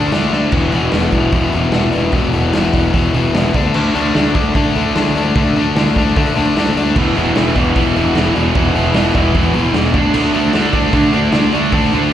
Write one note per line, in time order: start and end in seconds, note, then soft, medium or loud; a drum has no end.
0.00 0.12 D3 medium
0.00 0.13 A3 medium
0.00 0.13 D4 medium
0.12 0.28 D2 medium
0.12 0.32 D3 medium
0.12 0.33 A3 medium
0.12 0.33 D4 medium
0.12 snare loud
0.12 open hi-hat medium
0.32 0.47 D2 medium
0.32 0.52 D3 medium
0.32 0.52 A3 medium
0.32 0.52 D4 loud
0.32 snare medium
0.51 0.67 E1 medium
0.51 0.72 E2 medium
0.51 0.72 B2 medium
0.51 0.73 E3 loud
0.51 kick loud
0.51 crash medium
0.72 0.88 E1 medium
0.72 0.93 E2 medium
0.72 0.92 B2 medium
0.72 0.94 E3 medium
0.72 open hi-hat medium
0.92 1.08 E1 loud
0.92 1.12 E2 medium
0.92 1.13 B2 medium
0.92 1.14 E3 medium
0.92 snare loud
0.92 open hi-hat medium
1.12 1.28 E1 medium
1.12 1.32 E2 medium
1.12 1.33 B2 medium
1.12 1.33 E3 medium
1.12 kick medium
1.12 open hi-hat medium
1.32 1.48 E2 loud
1.32 1.53 E2 medium
1.32 1.53 B2 medium
1.32 1.54 E3 loud
1.32 kick loud
1.32 open hi-hat medium
1.52 1.68 E1 loud
1.52 1.72 E2 medium
1.52 1.72 B2 medium
1.52 1.73 E3 medium
1.52 open hi-hat medium
1.72 1.88 E1 medium
1.72 1.92 E2 medium
1.72 1.93 B2 medium
1.72 1.93 E3 medium
1.72 snare loud
1.72 open hi-hat medium
1.92 2.09 E1 medium
1.92 2.12 E2 medium
1.92 2.12 B2 medium
1.92 2.13 E3 loud
1.92 open hi-hat medium
2.12 2.28 E1 medium
2.12 2.32 E2 medium
2.12 2.33 B2 loud
2.12 2.33 E3 loud
2.12 kick loud
2.12 open hi-hat medium
2.33 2.49 E1 loud
2.33 2.52 E2 medium
2.33 2.53 B2 medium
2.33 2.54 E3 medium
2.33 open hi-hat medium
2.53 2.69 E1 medium
2.53 2.72 E2 medium
2.53 2.72 B2 medium
2.53 2.73 E3 loud
2.53 snare loud
2.53 open hi-hat medium
2.73 2.89 E1 medium
2.73 2.93 E2 medium
2.73 2.93 B2 medium
2.73 2.94 E3 medium
2.73 kick medium
2.73 open hi-hat medium
2.94 3.13 E2 medium
2.94 3.09 E2 medium
2.94 3.13 B2 medium
2.94 3.13 E3 loud
2.94 kick loud
2.94 open hi-hat medium
3.14 3.30 E1 medium
3.14 3.33 E2 medium
3.14 3.34 B2 medium
3.14 3.34 E3 medium
3.14 open hi-hat medium
3.34 3.50 E1 medium
3.34 3.54 E2 medium
3.34 3.54 B2 medium
3.34 3.54 E3 medium
3.34 snare loud
3.34 open hi-hat medium
3.54 3.70 D2 medium
3.54 3.74 D3 medium
3.54 3.75 A3 loud
3.54 3.75 D4 medium
3.54 kick loud
3.54 open hi-hat medium
3.74 3.90 D2 medium
3.74 3.94 D3 medium
3.74 3.95 A3 medium
3.74 3.95 D4 loud
3.74 crash loud
3.94 4.10 D2 medium
3.94 4.14 D3 medium
3.94 4.15 A3 medium
3.94 4.16 D4 loud
3.94 open hi-hat medium
4.15 4.31 D2 medium
4.15 4.34 D3 medium
4.15 4.35 A3 medium
4.15 4.35 D4 medium
4.15 snare loud
4.15 open hi-hat medium
4.35 4.50 D2 loud
4.35 4.54 D3 medium
4.35 4.55 A3 medium
4.35 4.55 D4 medium
4.35 kick medium
4.35 open hi-hat medium
4.55 4.70 D3 medium
4.55 4.75 D3 medium
4.55 4.75 A3 loud
4.55 4.75 D4 medium
4.55 kick loud
4.55 open hi-hat medium
4.75 4.91 D2 medium
4.75 4.95 D3 medium
4.75 4.95 A3 medium
4.75 4.96 D4 medium
4.75 open hi-hat medium
4.95 5.11 D2 medium
4.95 5.16 D3 medium
4.95 5.16 A3 medium
4.95 5.17 D4 loud
4.95 snare loud
4.95 open hi-hat medium
5.15 5.30 D2 medium
5.15 5.36 D3 medium
5.15 5.36 A3 medium
5.15 5.37 D4 medium
5.15 open hi-hat medium
5.36 5.50 D2 medium
5.36 5.55 D3 medium
5.36 5.56 A3 medium
5.36 5.56 D4 loud
5.36 kick loud
5.36 open hi-hat medium
5.56 5.71 D2 medium
5.56 5.75 D3 medium
5.56 5.76 A3 medium
5.56 5.76 D4 medium
5.56 open hi-hat medium
5.76 5.90 D2 medium
5.76 5.96 D3 medium
5.76 5.97 A3 medium
5.76 5.97 D4 medium
5.76 snare loud
5.76 open hi-hat medium
5.96 6.11 D2 medium
5.96 6.15 D3 medium
5.96 6.16 A3 medium
5.96 6.16 D4 medium
5.96 kick medium
5.96 open hi-hat medium
6.16 6.35 D3 medium
6.16 6.31 D3 medium
6.16 6.36 A3 loud
6.16 6.36 D4 medium
6.16 kick loud
6.16 open hi-hat medium
6.36 6.51 D2 loud
6.36 6.56 D3 medium
6.36 6.56 A3 medium
6.36 6.56 D4 loud
6.36 open hi-hat medium
6.57 6.71 D2 medium
6.57 6.76 D3 medium
6.57 6.76 A3 medium
6.57 6.77 D4 medium
6.57 snare loud
6.57 open hi-hat medium
6.77 6.98 D2 medium
6.77 6.95 D3 medium
6.77 6.96 A3 medium
6.77 6.96 D4 medium
6.77 open hi-hat medium
6.96 7.11 E1 medium
6.96 7.16 E2 medium
6.96 7.16 B2 medium
6.96 7.17 E3 loud
6.96 kick loud
6.96 crash loud
7.16 7.31 E1 medium
7.16 7.36 E2 medium
7.16 7.35 B2 medium
7.16 7.36 E3 medium
7.16 open hi-hat medium
7.36 7.51 E1 medium
7.36 7.56 E2 medium
7.36 7.56 B2 medium
7.36 7.56 E3 loud
7.36 snare loud
7.36 open hi-hat medium
7.55 7.71 E1 medium
7.55 7.75 E2 medium
7.55 7.75 B2 medium
7.55 7.76 E3 medium
7.55 kick medium
7.55 open hi-hat medium
7.76 7.95 E2 medium
7.76 7.91 E2 medium
7.76 7.95 B2 loud
7.76 7.96 E3 loud
7.76 kick loud
7.76 open hi-hat medium
7.96 8.11 E1 loud
7.96 8.15 E2 medium
7.96 8.15 B2 medium
7.96 8.16 E3 medium
7.96 open hi-hat medium
8.15 8.31 E1 medium
8.15 8.34 E2 medium
8.15 8.35 B2 medium
8.15 8.35 E3 medium
8.15 snare loud
8.15 open hi-hat medium
8.35 8.51 E1 medium
8.35 8.54 E2 medium
8.35 8.54 B2 medium
8.35 8.55 E3 medium
8.35 open hi-hat medium
8.55 8.70 E1 medium
8.55 8.74 E2 medium
8.55 8.74 B2 medium
8.55 8.74 E3 loud
8.55 kick loud
8.55 open hi-hat medium
8.75 8.90 E1 medium
8.75 8.94 E2 medium
8.75 8.95 B2 medium
8.75 8.95 E3 medium
8.75 open hi-hat medium
8.94 9.10 E1 loud
8.94 9.14 E2 medium
8.94 9.14 B2 medium
8.94 9.15 E3 medium
8.94 snare loud
8.94 open hi-hat medium
9.15 9.30 E1 medium
9.15 9.34 E2 medium
9.15 9.34 B2 medium
9.15 9.35 E3 loud
9.15 kick medium
9.15 open hi-hat medium
9.35 9.49 E2 medium
9.35 9.53 E2 loud
9.35 9.54 B2 medium
9.35 9.55 E3 medium
9.35 kick loud
9.35 open hi-hat medium
9.54 9.69 E1 medium
9.54 9.74 E2 medium
9.54 9.74 B2 medium
9.54 9.75 E3 medium
9.54 open hi-hat medium
9.74 9.94 E1 loud
9.74 9.94 E2 medium
9.74 9.94 B2 medium
9.74 9.94 E3 medium
9.74 snare loud
9.74 open hi-hat medium
9.94 10.09 D2 medium
9.94 10.13 D3 medium
9.94 10.14 A3 loud
9.94 10.14 D4 loud
9.94 kick loud
9.94 open hi-hat medium
10.14 10.30 D2 medium
10.14 10.33 D3 medium
10.14 10.34 A3 medium
10.14 10.34 D4 loud
10.14 crash loud
10.34 10.49 D2 medium
10.34 10.54 D3 medium
10.34 10.55 A3 medium
10.34 10.55 D4 medium
10.34 open hi-hat medium
10.53 10.69 D2 medium
10.53 10.74 D3 medium
10.53 10.74 A3 medium
10.53 10.75 D4 medium
10.53 snare loud
10.53 open hi-hat medium
10.73 10.88 D2 medium
10.73 10.92 D3 medium
10.73 10.92 A3 medium
10.73 10.93 D4 medium
10.73 kick medium
10.73 open hi-hat medium
10.93 11.11 D3 medium
10.93 11.08 D3 loud
10.93 11.12 A3 medium
10.93 11.12 D4 loud
10.93 kick loud
10.93 open hi-hat medium
11.12 11.28 D2 medium
11.12 11.31 D3 medium
11.12 11.32 A3 loud
11.12 11.32 D4 medium
11.12 open hi-hat medium
11.32 11.48 D2 loud
11.32 11.53 D3 medium
11.32 11.53 A3 medium
11.32 11.54 D4 medium
11.32 snare loud
11.32 open hi-hat medium
11.52 11.68 D2 medium
11.52 11.72 D3 medium
11.52 11.72 A3 medium
11.52 11.73 D4 medium
11.52 open hi-hat medium
11.72 11.88 D2 loud
11.72 11.92 D3 medium
11.72 11.92 A3 medium
11.72 11.93 D4 medium
11.72 kick loud
11.72 open hi-hat medium
11.93 12.08 D2 medium
11.93 12.12 D3 medium
11.93 12.12 A3 loud
11.93 12.13 D4 medium
11.93 open hi-hat soft